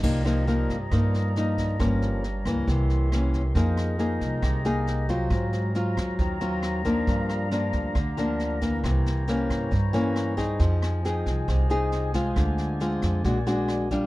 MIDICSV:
0, 0, Header, 1, 5, 480
1, 0, Start_track
1, 0, Key_signature, -3, "minor"
1, 0, Tempo, 440529
1, 34, Time_signature, 4, 2, 24, 8
1, 15324, End_track
2, 0, Start_track
2, 0, Title_t, "Woodwind section"
2, 0, Program_c, 0, 71
2, 47, Note_on_c, 0, 65, 78
2, 50, Note_on_c, 0, 74, 71
2, 50, Note_on_c, 0, 75, 72
2, 53, Note_on_c, 0, 82, 89
2, 1940, Note_off_c, 0, 65, 0
2, 1941, Note_off_c, 0, 74, 0
2, 1941, Note_off_c, 0, 75, 0
2, 1967, Note_on_c, 0, 77, 65
2, 1970, Note_on_c, 0, 67, 71
2, 1971, Note_on_c, 0, 73, 70
2, 2892, Note_off_c, 0, 82, 0
2, 2909, Note_off_c, 0, 77, 0
2, 2911, Note_off_c, 0, 67, 0
2, 2920, Note_on_c, 0, 76, 63
2, 2922, Note_on_c, 0, 70, 67
2, 2923, Note_on_c, 0, 84, 73
2, 3861, Note_off_c, 0, 73, 0
2, 3865, Note_off_c, 0, 76, 0
2, 3866, Note_off_c, 0, 70, 0
2, 3867, Note_off_c, 0, 84, 0
2, 3869, Note_on_c, 0, 68, 88
2, 3870, Note_on_c, 0, 79, 72
2, 3871, Note_on_c, 0, 75, 70
2, 3871, Note_on_c, 0, 82, 87
2, 5770, Note_off_c, 0, 68, 0
2, 5770, Note_off_c, 0, 75, 0
2, 5770, Note_off_c, 0, 79, 0
2, 5770, Note_off_c, 0, 82, 0
2, 5781, Note_on_c, 0, 72, 67
2, 5781, Note_on_c, 0, 77, 67
2, 5783, Note_on_c, 0, 82, 91
2, 7511, Note_off_c, 0, 72, 0
2, 7697, Note_on_c, 0, 67, 75
2, 7699, Note_on_c, 0, 74, 67
2, 9587, Note_off_c, 0, 77, 0
2, 9588, Note_off_c, 0, 82, 0
2, 9604, Note_off_c, 0, 67, 0
2, 9605, Note_off_c, 0, 74, 0
2, 9621, Note_on_c, 0, 72, 71
2, 9621, Note_on_c, 0, 73, 74
2, 9624, Note_on_c, 0, 64, 83
2, 9626, Note_on_c, 0, 82, 88
2, 11527, Note_off_c, 0, 72, 0
2, 11527, Note_off_c, 0, 73, 0
2, 11529, Note_off_c, 0, 64, 0
2, 11530, Note_off_c, 0, 82, 0
2, 11554, Note_on_c, 0, 72, 76
2, 11556, Note_on_c, 0, 75, 74
2, 11558, Note_on_c, 0, 65, 83
2, 11559, Note_on_c, 0, 80, 93
2, 13457, Note_off_c, 0, 75, 0
2, 13466, Note_on_c, 0, 74, 71
2, 14408, Note_off_c, 0, 72, 0
2, 14410, Note_off_c, 0, 65, 0
2, 14410, Note_off_c, 0, 80, 0
2, 14440, Note_on_c, 0, 66, 75
2, 14444, Note_on_c, 0, 70, 65
2, 14444, Note_on_c, 0, 80, 86
2, 15206, Note_off_c, 0, 66, 0
2, 15206, Note_off_c, 0, 70, 0
2, 15206, Note_off_c, 0, 74, 0
2, 15206, Note_off_c, 0, 80, 0
2, 15324, End_track
3, 0, Start_track
3, 0, Title_t, "Nylon-string guitar"
3, 0, Program_c, 1, 24
3, 28, Note_on_c, 1, 48, 59
3, 33, Note_on_c, 1, 53, 54
3, 34, Note_on_c, 1, 58, 60
3, 39, Note_on_c, 1, 63, 59
3, 233, Note_off_c, 1, 58, 0
3, 234, Note_off_c, 1, 53, 0
3, 238, Note_off_c, 1, 63, 0
3, 272, Note_on_c, 1, 53, 61
3, 278, Note_on_c, 1, 63, 62
3, 279, Note_on_c, 1, 58, 63
3, 475, Note_off_c, 1, 53, 0
3, 477, Note_off_c, 1, 58, 0
3, 477, Note_off_c, 1, 63, 0
3, 515, Note_on_c, 1, 53, 52
3, 524, Note_on_c, 1, 58, 57
3, 524, Note_on_c, 1, 63, 60
3, 823, Note_off_c, 1, 53, 0
3, 827, Note_off_c, 1, 63, 0
3, 828, Note_off_c, 1, 58, 0
3, 967, Note_off_c, 1, 48, 0
3, 995, Note_on_c, 1, 43, 46
3, 1005, Note_on_c, 1, 53, 51
3, 1008, Note_on_c, 1, 58, 49
3, 1013, Note_on_c, 1, 63, 58
3, 1439, Note_off_c, 1, 53, 0
3, 1442, Note_off_c, 1, 58, 0
3, 1443, Note_off_c, 1, 63, 0
3, 1489, Note_on_c, 1, 53, 52
3, 1496, Note_on_c, 1, 58, 51
3, 1498, Note_on_c, 1, 63, 59
3, 1923, Note_off_c, 1, 53, 0
3, 1925, Note_off_c, 1, 58, 0
3, 1925, Note_off_c, 1, 63, 0
3, 1931, Note_off_c, 1, 43, 0
3, 1955, Note_on_c, 1, 43, 57
3, 1959, Note_on_c, 1, 53, 55
3, 1964, Note_on_c, 1, 58, 58
3, 1966, Note_on_c, 1, 61, 60
3, 2431, Note_off_c, 1, 53, 0
3, 2434, Note_off_c, 1, 61, 0
3, 2435, Note_off_c, 1, 58, 0
3, 2686, Note_on_c, 1, 52, 71
3, 2693, Note_on_c, 1, 58, 65
3, 2890, Note_off_c, 1, 43, 0
3, 2923, Note_on_c, 1, 48, 52
3, 3360, Note_off_c, 1, 52, 0
3, 3362, Note_off_c, 1, 58, 0
3, 3401, Note_on_c, 1, 52, 53
3, 3411, Note_on_c, 1, 58, 56
3, 3413, Note_on_c, 1, 61, 61
3, 3718, Note_off_c, 1, 52, 0
3, 3723, Note_off_c, 1, 61, 0
3, 3724, Note_off_c, 1, 58, 0
3, 3852, Note_off_c, 1, 48, 0
3, 3870, Note_on_c, 1, 53, 59
3, 3877, Note_on_c, 1, 58, 60
3, 3881, Note_on_c, 1, 63, 60
3, 3889, Note_on_c, 1, 68, 60
3, 4314, Note_off_c, 1, 58, 0
3, 4318, Note_off_c, 1, 63, 0
3, 4320, Note_off_c, 1, 68, 0
3, 4347, Note_on_c, 1, 58, 51
3, 4352, Note_on_c, 1, 63, 56
3, 4357, Note_on_c, 1, 68, 53
3, 4806, Note_off_c, 1, 53, 0
3, 4819, Note_on_c, 1, 48, 56
3, 5029, Note_off_c, 1, 58, 0
3, 5033, Note_off_c, 1, 63, 0
3, 5034, Note_off_c, 1, 68, 0
3, 5067, Note_on_c, 1, 58, 70
3, 5072, Note_on_c, 1, 63, 68
3, 5076, Note_on_c, 1, 68, 77
3, 5510, Note_off_c, 1, 58, 0
3, 5512, Note_off_c, 1, 63, 0
3, 5514, Note_off_c, 1, 68, 0
3, 5546, Note_on_c, 1, 54, 71
3, 5550, Note_on_c, 1, 60, 60
3, 5555, Note_on_c, 1, 65, 68
3, 5760, Note_off_c, 1, 48, 0
3, 5786, Note_on_c, 1, 44, 58
3, 6229, Note_off_c, 1, 54, 0
3, 6232, Note_off_c, 1, 60, 0
3, 6233, Note_off_c, 1, 65, 0
3, 6264, Note_on_c, 1, 54, 54
3, 6271, Note_on_c, 1, 60, 58
3, 6277, Note_on_c, 1, 65, 70
3, 6723, Note_off_c, 1, 44, 0
3, 6755, Note_on_c, 1, 51, 51
3, 6948, Note_off_c, 1, 54, 0
3, 6952, Note_off_c, 1, 60, 0
3, 6954, Note_off_c, 1, 65, 0
3, 6982, Note_on_c, 1, 54, 65
3, 6989, Note_on_c, 1, 60, 63
3, 6998, Note_on_c, 1, 65, 71
3, 7427, Note_off_c, 1, 54, 0
3, 7432, Note_off_c, 1, 60, 0
3, 7433, Note_off_c, 1, 65, 0
3, 7461, Note_on_c, 1, 53, 63
3, 7468, Note_on_c, 1, 58, 69
3, 7472, Note_on_c, 1, 62, 70
3, 7688, Note_off_c, 1, 51, 0
3, 7709, Note_on_c, 1, 43, 61
3, 8147, Note_off_c, 1, 53, 0
3, 8151, Note_off_c, 1, 58, 0
3, 8151, Note_off_c, 1, 62, 0
3, 8188, Note_on_c, 1, 53, 51
3, 8189, Note_on_c, 1, 58, 53
3, 8196, Note_on_c, 1, 62, 62
3, 8645, Note_off_c, 1, 43, 0
3, 8666, Note_off_c, 1, 53, 0
3, 8666, Note_off_c, 1, 58, 0
3, 8670, Note_off_c, 1, 62, 0
3, 8681, Note_on_c, 1, 50, 51
3, 8904, Note_on_c, 1, 53, 62
3, 8914, Note_on_c, 1, 58, 66
3, 8921, Note_on_c, 1, 62, 72
3, 9349, Note_off_c, 1, 53, 0
3, 9354, Note_off_c, 1, 58, 0
3, 9355, Note_off_c, 1, 62, 0
3, 9388, Note_on_c, 1, 52, 65
3, 9395, Note_on_c, 1, 58, 60
3, 9612, Note_off_c, 1, 50, 0
3, 9630, Note_on_c, 1, 48, 60
3, 10071, Note_off_c, 1, 52, 0
3, 10073, Note_off_c, 1, 58, 0
3, 10108, Note_on_c, 1, 52, 61
3, 10119, Note_on_c, 1, 58, 59
3, 10126, Note_on_c, 1, 61, 66
3, 10567, Note_off_c, 1, 48, 0
3, 10580, Note_on_c, 1, 43, 52
3, 10586, Note_off_c, 1, 52, 0
3, 10592, Note_off_c, 1, 58, 0
3, 10596, Note_off_c, 1, 61, 0
3, 10821, Note_on_c, 1, 52, 68
3, 10830, Note_on_c, 1, 58, 66
3, 10830, Note_on_c, 1, 61, 74
3, 11268, Note_off_c, 1, 52, 0
3, 11272, Note_off_c, 1, 61, 0
3, 11273, Note_off_c, 1, 58, 0
3, 11299, Note_on_c, 1, 60, 68
3, 11304, Note_on_c, 1, 63, 68
3, 11306, Note_on_c, 1, 68, 66
3, 11522, Note_off_c, 1, 43, 0
3, 11552, Note_on_c, 1, 53, 63
3, 11987, Note_off_c, 1, 60, 0
3, 11988, Note_off_c, 1, 63, 0
3, 11990, Note_off_c, 1, 68, 0
3, 12038, Note_on_c, 1, 60, 58
3, 12044, Note_on_c, 1, 63, 58
3, 12046, Note_on_c, 1, 68, 61
3, 12489, Note_off_c, 1, 53, 0
3, 12508, Note_on_c, 1, 48, 55
3, 12718, Note_off_c, 1, 60, 0
3, 12718, Note_off_c, 1, 63, 0
3, 12721, Note_off_c, 1, 68, 0
3, 12745, Note_on_c, 1, 60, 62
3, 12750, Note_on_c, 1, 63, 65
3, 12758, Note_on_c, 1, 68, 75
3, 13191, Note_off_c, 1, 60, 0
3, 13194, Note_off_c, 1, 63, 0
3, 13196, Note_off_c, 1, 68, 0
3, 13228, Note_on_c, 1, 56, 61
3, 13238, Note_on_c, 1, 60, 60
3, 13240, Note_on_c, 1, 65, 72
3, 13448, Note_off_c, 1, 48, 0
3, 13465, Note_on_c, 1, 50, 57
3, 13913, Note_off_c, 1, 56, 0
3, 13918, Note_off_c, 1, 65, 0
3, 13919, Note_off_c, 1, 60, 0
3, 13958, Note_on_c, 1, 56, 61
3, 13964, Note_on_c, 1, 60, 56
3, 13966, Note_on_c, 1, 65, 61
3, 14407, Note_off_c, 1, 50, 0
3, 14419, Note_off_c, 1, 56, 0
3, 14420, Note_off_c, 1, 60, 0
3, 14422, Note_off_c, 1, 65, 0
3, 14434, Note_on_c, 1, 62, 53
3, 14435, Note_on_c, 1, 56, 50
3, 14437, Note_on_c, 1, 46, 52
3, 14442, Note_on_c, 1, 66, 58
3, 14576, Note_off_c, 1, 62, 0
3, 14577, Note_off_c, 1, 56, 0
3, 14580, Note_off_c, 1, 66, 0
3, 14672, Note_on_c, 1, 56, 61
3, 14676, Note_on_c, 1, 62, 60
3, 14679, Note_on_c, 1, 66, 66
3, 15118, Note_off_c, 1, 56, 0
3, 15118, Note_off_c, 1, 62, 0
3, 15120, Note_off_c, 1, 66, 0
3, 15157, Note_on_c, 1, 55, 62
3, 15162, Note_on_c, 1, 62, 68
3, 15172, Note_on_c, 1, 65, 69
3, 15324, Note_off_c, 1, 46, 0
3, 15324, Note_off_c, 1, 55, 0
3, 15324, Note_off_c, 1, 62, 0
3, 15324, Note_off_c, 1, 65, 0
3, 15324, End_track
4, 0, Start_track
4, 0, Title_t, "Upright bass"
4, 0, Program_c, 2, 32
4, 39, Note_on_c, 2, 36, 98
4, 712, Note_off_c, 2, 36, 0
4, 757, Note_on_c, 2, 43, 79
4, 978, Note_off_c, 2, 43, 0
4, 1002, Note_on_c, 2, 43, 100
4, 1913, Note_off_c, 2, 43, 0
4, 1963, Note_on_c, 2, 31, 103
4, 2633, Note_off_c, 2, 31, 0
4, 2676, Note_on_c, 2, 37, 80
4, 2897, Note_off_c, 2, 37, 0
4, 2916, Note_on_c, 2, 36, 92
4, 3829, Note_off_c, 2, 36, 0
4, 3870, Note_on_c, 2, 41, 97
4, 4546, Note_off_c, 2, 41, 0
4, 4589, Note_on_c, 2, 36, 81
4, 4812, Note_off_c, 2, 36, 0
4, 4823, Note_on_c, 2, 36, 97
4, 5742, Note_off_c, 2, 36, 0
4, 5779, Note_on_c, 2, 44, 98
4, 6460, Note_off_c, 2, 44, 0
4, 6507, Note_on_c, 2, 39, 84
4, 6731, Note_off_c, 2, 39, 0
4, 6742, Note_on_c, 2, 39, 93
4, 7662, Note_off_c, 2, 39, 0
4, 7708, Note_on_c, 2, 43, 89
4, 8385, Note_off_c, 2, 43, 0
4, 8426, Note_on_c, 2, 38, 80
4, 8651, Note_off_c, 2, 38, 0
4, 8664, Note_on_c, 2, 38, 96
4, 9583, Note_off_c, 2, 38, 0
4, 9632, Note_on_c, 2, 36, 95
4, 10308, Note_off_c, 2, 36, 0
4, 10350, Note_on_c, 2, 43, 78
4, 10573, Note_off_c, 2, 43, 0
4, 10594, Note_on_c, 2, 43, 83
4, 11509, Note_off_c, 2, 43, 0
4, 11547, Note_on_c, 2, 41, 103
4, 12226, Note_off_c, 2, 41, 0
4, 12270, Note_on_c, 2, 36, 86
4, 12494, Note_off_c, 2, 36, 0
4, 12512, Note_on_c, 2, 36, 87
4, 13430, Note_off_c, 2, 36, 0
4, 13472, Note_on_c, 2, 38, 94
4, 14150, Note_off_c, 2, 38, 0
4, 14197, Note_on_c, 2, 41, 74
4, 14420, Note_off_c, 2, 41, 0
4, 14434, Note_on_c, 2, 34, 95
4, 15324, Note_off_c, 2, 34, 0
4, 15324, End_track
5, 0, Start_track
5, 0, Title_t, "Drums"
5, 37, Note_on_c, 9, 36, 62
5, 37, Note_on_c, 9, 38, 22
5, 37, Note_on_c, 9, 49, 68
5, 146, Note_off_c, 9, 36, 0
5, 146, Note_off_c, 9, 38, 0
5, 146, Note_off_c, 9, 49, 0
5, 279, Note_on_c, 9, 37, 59
5, 279, Note_on_c, 9, 38, 22
5, 388, Note_off_c, 9, 37, 0
5, 388, Note_off_c, 9, 38, 0
5, 520, Note_on_c, 9, 38, 23
5, 628, Note_off_c, 9, 38, 0
5, 757, Note_on_c, 9, 36, 25
5, 760, Note_on_c, 9, 38, 23
5, 866, Note_off_c, 9, 36, 0
5, 869, Note_off_c, 9, 38, 0
5, 997, Note_on_c, 9, 36, 54
5, 998, Note_on_c, 9, 37, 54
5, 998, Note_on_c, 9, 38, 22
5, 1106, Note_off_c, 9, 36, 0
5, 1107, Note_off_c, 9, 37, 0
5, 1107, Note_off_c, 9, 38, 0
5, 1244, Note_on_c, 9, 38, 22
5, 1353, Note_off_c, 9, 38, 0
5, 1480, Note_on_c, 9, 38, 21
5, 1589, Note_off_c, 9, 38, 0
5, 1717, Note_on_c, 9, 36, 25
5, 1722, Note_on_c, 9, 38, 24
5, 1826, Note_off_c, 9, 36, 0
5, 1831, Note_off_c, 9, 38, 0
5, 1957, Note_on_c, 9, 36, 58
5, 1959, Note_on_c, 9, 37, 58
5, 1959, Note_on_c, 9, 38, 23
5, 2066, Note_off_c, 9, 36, 0
5, 2068, Note_off_c, 9, 37, 0
5, 2068, Note_off_c, 9, 38, 0
5, 2200, Note_on_c, 9, 38, 21
5, 2309, Note_off_c, 9, 38, 0
5, 2441, Note_on_c, 9, 38, 24
5, 2550, Note_off_c, 9, 38, 0
5, 2674, Note_on_c, 9, 37, 59
5, 2674, Note_on_c, 9, 38, 23
5, 2675, Note_on_c, 9, 36, 24
5, 2783, Note_off_c, 9, 36, 0
5, 2783, Note_off_c, 9, 37, 0
5, 2783, Note_off_c, 9, 38, 0
5, 2915, Note_on_c, 9, 36, 53
5, 2918, Note_on_c, 9, 38, 22
5, 3024, Note_off_c, 9, 36, 0
5, 3027, Note_off_c, 9, 38, 0
5, 3158, Note_on_c, 9, 38, 23
5, 3267, Note_off_c, 9, 38, 0
5, 3400, Note_on_c, 9, 37, 56
5, 3400, Note_on_c, 9, 38, 21
5, 3509, Note_off_c, 9, 37, 0
5, 3509, Note_off_c, 9, 38, 0
5, 3631, Note_on_c, 9, 36, 25
5, 3637, Note_on_c, 9, 38, 26
5, 3740, Note_off_c, 9, 36, 0
5, 3746, Note_off_c, 9, 38, 0
5, 3870, Note_on_c, 9, 36, 55
5, 3872, Note_on_c, 9, 38, 26
5, 3979, Note_off_c, 9, 36, 0
5, 3981, Note_off_c, 9, 38, 0
5, 4110, Note_on_c, 9, 37, 53
5, 4110, Note_on_c, 9, 38, 22
5, 4219, Note_off_c, 9, 37, 0
5, 4219, Note_off_c, 9, 38, 0
5, 4348, Note_on_c, 9, 38, 23
5, 4457, Note_off_c, 9, 38, 0
5, 4586, Note_on_c, 9, 36, 24
5, 4589, Note_on_c, 9, 38, 26
5, 4695, Note_off_c, 9, 36, 0
5, 4698, Note_off_c, 9, 38, 0
5, 4822, Note_on_c, 9, 36, 55
5, 4822, Note_on_c, 9, 37, 56
5, 4822, Note_on_c, 9, 38, 24
5, 4931, Note_off_c, 9, 36, 0
5, 4931, Note_off_c, 9, 37, 0
5, 4931, Note_off_c, 9, 38, 0
5, 5063, Note_on_c, 9, 38, 25
5, 5172, Note_off_c, 9, 38, 0
5, 5307, Note_on_c, 9, 38, 23
5, 5416, Note_off_c, 9, 38, 0
5, 5542, Note_on_c, 9, 36, 26
5, 5545, Note_on_c, 9, 38, 23
5, 5651, Note_off_c, 9, 36, 0
5, 5654, Note_off_c, 9, 38, 0
5, 5778, Note_on_c, 9, 37, 51
5, 5778, Note_on_c, 9, 38, 21
5, 5781, Note_on_c, 9, 36, 59
5, 5887, Note_off_c, 9, 37, 0
5, 5887, Note_off_c, 9, 38, 0
5, 5890, Note_off_c, 9, 36, 0
5, 6023, Note_on_c, 9, 38, 23
5, 6132, Note_off_c, 9, 38, 0
5, 6265, Note_on_c, 9, 38, 26
5, 6374, Note_off_c, 9, 38, 0
5, 6503, Note_on_c, 9, 36, 24
5, 6506, Note_on_c, 9, 37, 55
5, 6506, Note_on_c, 9, 38, 24
5, 6612, Note_off_c, 9, 36, 0
5, 6615, Note_off_c, 9, 37, 0
5, 6615, Note_off_c, 9, 38, 0
5, 6743, Note_on_c, 9, 38, 23
5, 6744, Note_on_c, 9, 36, 57
5, 6852, Note_off_c, 9, 38, 0
5, 6853, Note_off_c, 9, 36, 0
5, 6983, Note_on_c, 9, 38, 23
5, 7092, Note_off_c, 9, 38, 0
5, 7219, Note_on_c, 9, 37, 55
5, 7219, Note_on_c, 9, 38, 20
5, 7328, Note_off_c, 9, 37, 0
5, 7328, Note_off_c, 9, 38, 0
5, 7466, Note_on_c, 9, 36, 27
5, 7466, Note_on_c, 9, 38, 26
5, 7575, Note_off_c, 9, 36, 0
5, 7575, Note_off_c, 9, 38, 0
5, 7707, Note_on_c, 9, 36, 62
5, 7707, Note_on_c, 9, 38, 23
5, 7816, Note_off_c, 9, 36, 0
5, 7816, Note_off_c, 9, 38, 0
5, 7948, Note_on_c, 9, 37, 57
5, 7948, Note_on_c, 9, 38, 24
5, 8057, Note_off_c, 9, 37, 0
5, 8057, Note_off_c, 9, 38, 0
5, 8185, Note_on_c, 9, 38, 27
5, 8294, Note_off_c, 9, 38, 0
5, 8422, Note_on_c, 9, 38, 24
5, 8425, Note_on_c, 9, 36, 25
5, 8531, Note_off_c, 9, 38, 0
5, 8534, Note_off_c, 9, 36, 0
5, 8663, Note_on_c, 9, 37, 59
5, 8663, Note_on_c, 9, 38, 24
5, 8665, Note_on_c, 9, 36, 57
5, 8772, Note_off_c, 9, 37, 0
5, 8772, Note_off_c, 9, 38, 0
5, 8774, Note_off_c, 9, 36, 0
5, 8907, Note_on_c, 9, 38, 21
5, 9016, Note_off_c, 9, 38, 0
5, 9147, Note_on_c, 9, 38, 21
5, 9256, Note_off_c, 9, 38, 0
5, 9386, Note_on_c, 9, 36, 25
5, 9389, Note_on_c, 9, 38, 27
5, 9495, Note_off_c, 9, 36, 0
5, 9498, Note_off_c, 9, 38, 0
5, 9628, Note_on_c, 9, 36, 55
5, 9631, Note_on_c, 9, 37, 62
5, 9631, Note_on_c, 9, 38, 23
5, 9737, Note_off_c, 9, 36, 0
5, 9740, Note_off_c, 9, 37, 0
5, 9740, Note_off_c, 9, 38, 0
5, 9873, Note_on_c, 9, 38, 20
5, 9982, Note_off_c, 9, 38, 0
5, 10109, Note_on_c, 9, 38, 25
5, 10218, Note_off_c, 9, 38, 0
5, 10349, Note_on_c, 9, 36, 25
5, 10355, Note_on_c, 9, 37, 62
5, 10355, Note_on_c, 9, 38, 23
5, 10458, Note_off_c, 9, 36, 0
5, 10464, Note_off_c, 9, 37, 0
5, 10464, Note_off_c, 9, 38, 0
5, 10589, Note_on_c, 9, 36, 58
5, 10590, Note_on_c, 9, 38, 23
5, 10698, Note_off_c, 9, 36, 0
5, 10699, Note_off_c, 9, 38, 0
5, 10831, Note_on_c, 9, 38, 23
5, 10940, Note_off_c, 9, 38, 0
5, 11068, Note_on_c, 9, 37, 55
5, 11068, Note_on_c, 9, 38, 23
5, 11177, Note_off_c, 9, 37, 0
5, 11177, Note_off_c, 9, 38, 0
5, 11307, Note_on_c, 9, 36, 25
5, 11309, Note_on_c, 9, 38, 26
5, 11416, Note_off_c, 9, 36, 0
5, 11418, Note_off_c, 9, 38, 0
5, 11542, Note_on_c, 9, 38, 24
5, 11546, Note_on_c, 9, 36, 58
5, 11651, Note_off_c, 9, 38, 0
5, 11655, Note_off_c, 9, 36, 0
5, 11794, Note_on_c, 9, 37, 63
5, 11794, Note_on_c, 9, 38, 21
5, 11903, Note_off_c, 9, 37, 0
5, 11903, Note_off_c, 9, 38, 0
5, 12037, Note_on_c, 9, 38, 26
5, 12146, Note_off_c, 9, 38, 0
5, 12269, Note_on_c, 9, 36, 25
5, 12273, Note_on_c, 9, 38, 26
5, 12378, Note_off_c, 9, 36, 0
5, 12382, Note_off_c, 9, 38, 0
5, 12509, Note_on_c, 9, 36, 56
5, 12513, Note_on_c, 9, 37, 54
5, 12513, Note_on_c, 9, 38, 23
5, 12618, Note_off_c, 9, 36, 0
5, 12622, Note_off_c, 9, 37, 0
5, 12622, Note_off_c, 9, 38, 0
5, 12749, Note_on_c, 9, 38, 23
5, 12858, Note_off_c, 9, 38, 0
5, 12988, Note_on_c, 9, 38, 22
5, 13097, Note_off_c, 9, 38, 0
5, 13227, Note_on_c, 9, 38, 28
5, 13229, Note_on_c, 9, 36, 26
5, 13336, Note_off_c, 9, 38, 0
5, 13338, Note_off_c, 9, 36, 0
5, 13469, Note_on_c, 9, 37, 61
5, 13469, Note_on_c, 9, 38, 23
5, 13470, Note_on_c, 9, 36, 59
5, 13578, Note_off_c, 9, 37, 0
5, 13578, Note_off_c, 9, 38, 0
5, 13579, Note_off_c, 9, 36, 0
5, 13706, Note_on_c, 9, 38, 21
5, 13815, Note_off_c, 9, 38, 0
5, 13947, Note_on_c, 9, 38, 26
5, 14056, Note_off_c, 9, 38, 0
5, 14189, Note_on_c, 9, 37, 57
5, 14189, Note_on_c, 9, 38, 27
5, 14192, Note_on_c, 9, 36, 24
5, 14298, Note_off_c, 9, 37, 0
5, 14298, Note_off_c, 9, 38, 0
5, 14301, Note_off_c, 9, 36, 0
5, 14429, Note_on_c, 9, 38, 23
5, 14433, Note_on_c, 9, 36, 56
5, 14538, Note_off_c, 9, 38, 0
5, 14542, Note_off_c, 9, 36, 0
5, 14671, Note_on_c, 9, 38, 24
5, 14780, Note_off_c, 9, 38, 0
5, 14908, Note_on_c, 9, 37, 57
5, 14908, Note_on_c, 9, 38, 22
5, 15017, Note_off_c, 9, 37, 0
5, 15017, Note_off_c, 9, 38, 0
5, 15153, Note_on_c, 9, 38, 25
5, 15155, Note_on_c, 9, 36, 26
5, 15262, Note_off_c, 9, 38, 0
5, 15264, Note_off_c, 9, 36, 0
5, 15324, End_track
0, 0, End_of_file